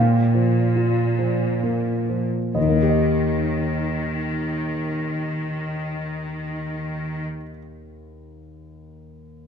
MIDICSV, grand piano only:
0, 0, Header, 1, 2, 480
1, 0, Start_track
1, 0, Key_signature, -3, "major"
1, 0, Tempo, 1265823
1, 454, Tempo, 1366743
1, 934, Time_signature, 4, 2, 24, 8
1, 934, Tempo, 1318681
1, 1894, Tempo, 1360544
1, 3400, End_track
2, 0, Start_track
2, 0, Title_t, "Grand piano"
2, 0, Program_c, 0, 0
2, 0, Note_on_c, 0, 46, 34
2, 0, Note_on_c, 0, 77, 42
2, 62, Control_c, 0, 64, 127
2, 131, Note_on_c, 0, 53, 24
2, 287, Note_on_c, 0, 65, 25
2, 388, Note_off_c, 0, 53, 0
2, 450, Note_on_c, 0, 53, 23
2, 545, Note_off_c, 0, 65, 0
2, 607, Note_on_c, 0, 58, 19
2, 708, Note_off_c, 0, 53, 0
2, 769, Note_on_c, 0, 53, 20
2, 869, Note_off_c, 0, 58, 0
2, 916, Note_off_c, 0, 77, 0
2, 918, Note_off_c, 0, 46, 0
2, 927, Note_on_c, 0, 39, 27
2, 927, Note_on_c, 0, 75, 30
2, 931, Note_off_c, 0, 53, 0
2, 941, Control_c, 0, 64, 0
2, 951, Note_on_c, 0, 51, 26
2, 979, Note_on_c, 0, 58, 27
2, 1005, Note_on_c, 0, 63, 25
2, 1014, Control_c, 0, 64, 127
2, 1028, Note_on_c, 0, 67, 26
2, 1048, Note_off_c, 0, 75, 0
2, 1053, Note_on_c, 0, 75, 26
2, 2604, Note_off_c, 0, 39, 0
2, 2628, Note_off_c, 0, 51, 0
2, 2655, Note_off_c, 0, 58, 0
2, 2679, Note_off_c, 0, 63, 0
2, 2702, Note_off_c, 0, 67, 0
2, 2727, Note_off_c, 0, 75, 0
2, 3400, End_track
0, 0, End_of_file